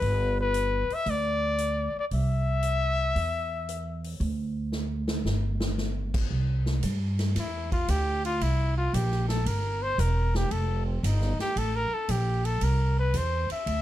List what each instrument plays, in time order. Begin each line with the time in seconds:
Already playing: trumpet B4
0.01 upright bass G1, kick, open hi-hat
0.41 trumpet B4
0.54 closed hi-hat
0.90 muted upright bass stroke, open hi-hat
0.94 trumpet E5
1.06 upright bass D2, trumpet D5, kick, open hi-hat
1.58 closed hi-hat
1.96 trumpet D5, muted upright bass stroke
2.11 upright bass C2, trumpet E5, kick, open hi-hat
2.63 closed hi-hat
3.15 upright bass E2, kick, open hi-hat
3.69 closed hi-hat
4.04 open hi-hat
4.20 upright bass D2, kick, open hi-hat
4.72 snare
5.08 snare
5.25 upright bass G1, snare
5.60 snare
5.78 snare
6.14 kick, crash
6.30 upright bass C2, kick
6.66 snare
6.83 upright bass G2, kick, hi-hat pedal, ride
7.19 snare, ride
7.35 upright bass E2, trumpet E4, kick, snare, ride
7.72 trumpet F4, kick, ride
7.88 upright bass D2, trumpet G4, kick, hi-hat pedal, ride
8.25 trumpet F4, ride
8.41 upright bass C2, trumpet E4, kick, ride
8.78 trumpet F4
8.93 upright bass A#1, trumpet G4, kick, hi-hat pedal, ride
9.11 snare
9.28 trumpet A4, snare, ride
9.46 upright bass G1, trumpet A#4, kick, ride
9.83 trumpet C5
9.98 upright bass E1, trumpet A#4, kick, hi-hat pedal, ride
10.35 trumpet G4, snare
10.51 upright bass F1, trumpet A4, kick, ride
10.86 trumpet C4
11.03 upright bass G1, trumpet D#4, kick, hi-hat pedal, ride
11.21 snare
11.38 trumpet G4, muted upright bass stroke, snare, ride
11.56 upright bass A1, trumpet A4, kick, ride
11.76 trumpet A#4
11.91 trumpet A4, muted upright bass stroke
12.09 upright bass A#1, trumpet G4, kick, hi-hat pedal, ride
12.45 trumpet A4, ride
12.61 upright bass C2, trumpet A#4, kick, ride
12.99 trumpet B4
13.14 upright bass E2, trumpet C5, kick, hi-hat pedal, ride
13.50 trumpet E5, muted upright bass stroke, ride
13.66 upright bass D2, kick, ride